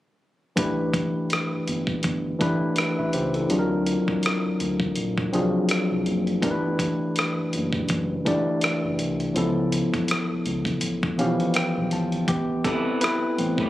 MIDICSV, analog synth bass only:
0, 0, Header, 1, 2, 480
1, 0, Start_track
1, 0, Tempo, 731707
1, 375, Time_signature, 4, 2, 24, 8
1, 8985, End_track
2, 0, Start_track
2, 0, Title_t, "Analog synth bass"
2, 0, Program_c, 0, 38
2, 378, Note_on_c, 0, 33, 90
2, 679, Note_off_c, 0, 33, 0
2, 1003, Note_on_c, 0, 31, 44
2, 1041, Note_off_c, 0, 31, 0
2, 1101, Note_on_c, 0, 31, 80
2, 1289, Note_off_c, 0, 31, 0
2, 1344, Note_on_c, 0, 31, 86
2, 1531, Note_off_c, 0, 31, 0
2, 1584, Note_on_c, 0, 33, 87
2, 1692, Note_off_c, 0, 33, 0
2, 1964, Note_on_c, 0, 33, 88
2, 2040, Note_off_c, 0, 33, 0
2, 2064, Note_on_c, 0, 37, 73
2, 2251, Note_off_c, 0, 37, 0
2, 2305, Note_on_c, 0, 38, 99
2, 2603, Note_off_c, 0, 38, 0
2, 2925, Note_on_c, 0, 38, 45
2, 2962, Note_off_c, 0, 38, 0
2, 3024, Note_on_c, 0, 38, 80
2, 3211, Note_off_c, 0, 38, 0
2, 3264, Note_on_c, 0, 34, 93
2, 3451, Note_off_c, 0, 34, 0
2, 3503, Note_on_c, 0, 36, 87
2, 3611, Note_off_c, 0, 36, 0
2, 3882, Note_on_c, 0, 36, 82
2, 3959, Note_off_c, 0, 36, 0
2, 3982, Note_on_c, 0, 30, 88
2, 4170, Note_off_c, 0, 30, 0
2, 4218, Note_on_c, 0, 31, 94
2, 4519, Note_off_c, 0, 31, 0
2, 4845, Note_on_c, 0, 30, 44
2, 4882, Note_off_c, 0, 30, 0
2, 4944, Note_on_c, 0, 30, 88
2, 5131, Note_off_c, 0, 30, 0
2, 5185, Note_on_c, 0, 30, 92
2, 5372, Note_off_c, 0, 30, 0
2, 5424, Note_on_c, 0, 31, 81
2, 5532, Note_off_c, 0, 31, 0
2, 5804, Note_on_c, 0, 30, 94
2, 5879, Note_off_c, 0, 30, 0
2, 5902, Note_on_c, 0, 36, 84
2, 6090, Note_off_c, 0, 36, 0
2, 6143, Note_on_c, 0, 37, 100
2, 6442, Note_off_c, 0, 37, 0
2, 6765, Note_on_c, 0, 37, 43
2, 6803, Note_off_c, 0, 37, 0
2, 6862, Note_on_c, 0, 37, 80
2, 7050, Note_off_c, 0, 37, 0
2, 7102, Note_on_c, 0, 33, 87
2, 7290, Note_off_c, 0, 33, 0
2, 7343, Note_on_c, 0, 35, 84
2, 7452, Note_off_c, 0, 35, 0
2, 7725, Note_on_c, 0, 35, 82
2, 7800, Note_off_c, 0, 35, 0
2, 7823, Note_on_c, 0, 32, 81
2, 8010, Note_off_c, 0, 32, 0
2, 8060, Note_on_c, 0, 33, 93
2, 8360, Note_off_c, 0, 33, 0
2, 8446, Note_on_c, 0, 33, 43
2, 8483, Note_off_c, 0, 33, 0
2, 8786, Note_on_c, 0, 33, 86
2, 8893, Note_off_c, 0, 33, 0
2, 8913, Note_on_c, 0, 45, 93
2, 8985, Note_off_c, 0, 45, 0
2, 8985, End_track
0, 0, End_of_file